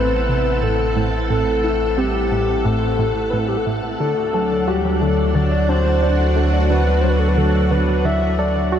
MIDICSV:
0, 0, Header, 1, 7, 480
1, 0, Start_track
1, 0, Tempo, 674157
1, 929, Time_signature, 4, 2, 24, 8
1, 6261, End_track
2, 0, Start_track
2, 0, Title_t, "Synth texture"
2, 0, Program_c, 0, 99
2, 0, Note_on_c, 0, 64, 89
2, 0, Note_on_c, 0, 78, 90
2, 6261, Note_off_c, 0, 64, 0
2, 6261, Note_off_c, 0, 78, 0
2, 6261, End_track
3, 0, Start_track
3, 0, Title_t, "Soft synth lead"
3, 0, Program_c, 1, 80
3, 0, Note_on_c, 1, 71, 110
3, 451, Note_on_c, 1, 69, 105
3, 462, Note_off_c, 1, 71, 0
3, 810, Note_off_c, 1, 69, 0
3, 930, Note_on_c, 1, 69, 110
3, 1411, Note_on_c, 1, 67, 98
3, 1421, Note_off_c, 1, 69, 0
3, 1890, Note_on_c, 1, 69, 90
3, 1901, Note_off_c, 1, 67, 0
3, 2351, Note_on_c, 1, 71, 76
3, 2361, Note_off_c, 1, 69, 0
3, 2415, Note_on_c, 1, 69, 75
3, 2426, Note_off_c, 1, 71, 0
3, 2480, Note_on_c, 1, 67, 74
3, 2491, Note_off_c, 1, 69, 0
3, 2543, Note_on_c, 1, 69, 73
3, 2554, Note_off_c, 1, 67, 0
3, 2609, Note_off_c, 1, 69, 0
3, 2850, Note_on_c, 1, 69, 104
3, 3331, Note_on_c, 1, 67, 94
3, 3342, Note_off_c, 1, 69, 0
3, 3569, Note_on_c, 1, 69, 98
3, 3579, Note_off_c, 1, 67, 0
3, 3808, Note_on_c, 1, 74, 113
3, 3819, Note_off_c, 1, 69, 0
3, 4051, Note_on_c, 1, 72, 104
3, 4062, Note_off_c, 1, 74, 0
3, 4530, Note_off_c, 1, 72, 0
3, 4772, Note_on_c, 1, 71, 100
3, 4989, Note_on_c, 1, 72, 80
3, 5000, Note_off_c, 1, 71, 0
3, 5053, Note_on_c, 1, 71, 81
3, 5064, Note_off_c, 1, 72, 0
3, 5120, Note_on_c, 1, 69, 80
3, 5131, Note_off_c, 1, 71, 0
3, 5185, Note_on_c, 1, 71, 78
3, 5196, Note_off_c, 1, 69, 0
3, 5254, Note_on_c, 1, 69, 98
3, 5264, Note_off_c, 1, 71, 0
3, 5492, Note_on_c, 1, 71, 100
3, 5503, Note_off_c, 1, 69, 0
3, 5732, Note_on_c, 1, 76, 117
3, 5743, Note_off_c, 1, 71, 0
3, 5972, Note_on_c, 1, 74, 107
3, 5982, Note_off_c, 1, 76, 0
3, 6261, Note_off_c, 1, 74, 0
3, 6261, End_track
4, 0, Start_track
4, 0, Title_t, "Harp"
4, 0, Program_c, 2, 46
4, 2847, Note_on_c, 2, 74, 96
4, 2969, Note_on_c, 2, 66, 74
4, 3087, Note_on_c, 2, 54, 97
4, 3205, Note_off_c, 2, 74, 0
4, 3208, Note_on_c, 2, 74, 98
4, 3325, Note_off_c, 2, 66, 0
4, 3327, Note_on_c, 2, 66, 81
4, 3439, Note_off_c, 2, 54, 0
4, 3448, Note_on_c, 2, 54, 99
4, 3567, Note_off_c, 2, 74, 0
4, 3569, Note_on_c, 2, 74, 101
4, 3686, Note_off_c, 2, 66, 0
4, 3689, Note_on_c, 2, 66, 74
4, 3801, Note_off_c, 2, 54, 0
4, 3809, Note_on_c, 2, 54, 97
4, 3925, Note_off_c, 2, 74, 0
4, 3928, Note_on_c, 2, 74, 98
4, 4045, Note_off_c, 2, 66, 0
4, 4048, Note_on_c, 2, 66, 74
4, 4159, Note_off_c, 2, 54, 0
4, 4168, Note_on_c, 2, 54, 96
4, 4286, Note_off_c, 2, 74, 0
4, 4289, Note_on_c, 2, 74, 99
4, 4406, Note_off_c, 2, 66, 0
4, 4409, Note_on_c, 2, 66, 74
4, 4521, Note_off_c, 2, 54, 0
4, 4529, Note_on_c, 2, 54, 99
4, 4646, Note_off_c, 2, 74, 0
4, 4649, Note_on_c, 2, 74, 101
4, 4766, Note_off_c, 2, 66, 0
4, 4769, Note_on_c, 2, 66, 81
4, 4879, Note_off_c, 2, 54, 0
4, 4888, Note_on_c, 2, 54, 99
4, 5005, Note_off_c, 2, 74, 0
4, 5008, Note_on_c, 2, 74, 99
4, 5126, Note_off_c, 2, 66, 0
4, 5128, Note_on_c, 2, 66, 74
4, 5239, Note_off_c, 2, 54, 0
4, 5247, Note_on_c, 2, 54, 97
4, 5365, Note_off_c, 2, 74, 0
4, 5367, Note_on_c, 2, 74, 100
4, 5485, Note_off_c, 2, 66, 0
4, 5488, Note_on_c, 2, 66, 74
4, 5600, Note_off_c, 2, 54, 0
4, 5609, Note_on_c, 2, 54, 103
4, 5725, Note_off_c, 2, 74, 0
4, 5728, Note_on_c, 2, 74, 99
4, 5845, Note_off_c, 2, 66, 0
4, 5848, Note_on_c, 2, 66, 74
4, 5959, Note_off_c, 2, 54, 0
4, 5967, Note_on_c, 2, 54, 100
4, 6084, Note_off_c, 2, 74, 0
4, 6087, Note_on_c, 2, 74, 104
4, 6204, Note_off_c, 2, 66, 0
4, 6207, Note_on_c, 2, 66, 83
4, 6261, Note_off_c, 2, 54, 0
4, 6261, Note_off_c, 2, 66, 0
4, 6261, Note_off_c, 2, 74, 0
4, 6261, End_track
5, 0, Start_track
5, 0, Title_t, "String machine"
5, 0, Program_c, 3, 50
5, 0, Note_on_c, 3, 60, 83
5, 0, Note_on_c, 3, 64, 75
5, 0, Note_on_c, 3, 69, 78
5, 2849, Note_on_c, 3, 62, 80
5, 3368, Note_on_c, 3, 66, 76
5, 3505, Note_off_c, 3, 60, 0
5, 4010, Note_off_c, 3, 64, 0
5, 6261, Note_off_c, 3, 62, 0
5, 6261, Note_off_c, 3, 66, 0
5, 6261, Note_off_c, 3, 69, 0
5, 6261, End_track
6, 0, Start_track
6, 0, Title_t, "Synth arpeggio sound"
6, 0, Program_c, 4, 84
6, 207, Note_on_c, 4, 48, 74
6, 436, Note_off_c, 4, 48, 0
6, 446, Note_on_c, 4, 45, 78
6, 676, Note_off_c, 4, 45, 0
6, 686, Note_on_c, 4, 45, 101
6, 789, Note_off_c, 4, 45, 0
6, 928, Note_on_c, 4, 45, 81
6, 1030, Note_off_c, 4, 45, 0
6, 1167, Note_on_c, 4, 64, 74
6, 1337, Note_off_c, 4, 64, 0
6, 1408, Note_on_c, 4, 60, 100
6, 1637, Note_off_c, 4, 60, 0
6, 1648, Note_on_c, 4, 45, 78
6, 1818, Note_off_c, 4, 45, 0
6, 1888, Note_on_c, 4, 45, 100
6, 2117, Note_off_c, 4, 45, 0
6, 2128, Note_on_c, 4, 45, 101
6, 2230, Note_off_c, 4, 45, 0
6, 2371, Note_on_c, 4, 45, 79
6, 2539, Note_off_c, 4, 45, 0
6, 2610, Note_on_c, 4, 45, 74
6, 2711, Note_off_c, 4, 45, 0
6, 2850, Note_on_c, 4, 50, 82
6, 2951, Note_off_c, 4, 50, 0
6, 3091, Note_on_c, 4, 69, 75
6, 3259, Note_off_c, 4, 69, 0
6, 3330, Note_on_c, 4, 66, 103
6, 3558, Note_off_c, 4, 66, 0
6, 3572, Note_on_c, 4, 50, 76
6, 3740, Note_off_c, 4, 50, 0
6, 3811, Note_on_c, 4, 50, 100
6, 4038, Note_off_c, 4, 50, 0
6, 4051, Note_on_c, 4, 62, 76
6, 4219, Note_off_c, 4, 62, 0
6, 4291, Note_on_c, 4, 62, 79
6, 4518, Note_off_c, 4, 62, 0
6, 4530, Note_on_c, 4, 57, 76
6, 4758, Note_off_c, 4, 57, 0
6, 4770, Note_on_c, 4, 50, 83
6, 4871, Note_off_c, 4, 50, 0
6, 5011, Note_on_c, 4, 54, 72
6, 5238, Note_off_c, 4, 54, 0
6, 5250, Note_on_c, 4, 50, 77
6, 5478, Note_off_c, 4, 50, 0
6, 5490, Note_on_c, 4, 50, 102
6, 5591, Note_off_c, 4, 50, 0
6, 5730, Note_on_c, 4, 50, 82
6, 5831, Note_off_c, 4, 50, 0
6, 5972, Note_on_c, 4, 69, 79
6, 6140, Note_off_c, 4, 69, 0
6, 6210, Note_on_c, 4, 66, 102
6, 6261, Note_off_c, 4, 66, 0
6, 6261, End_track
7, 0, Start_track
7, 0, Title_t, "Sub bass"
7, 0, Program_c, 5, 38
7, 0, Note_on_c, 5, 33, 87
7, 2825, Note_off_c, 5, 33, 0
7, 2848, Note_on_c, 5, 38, 86
7, 6261, Note_off_c, 5, 38, 0
7, 6261, End_track
0, 0, End_of_file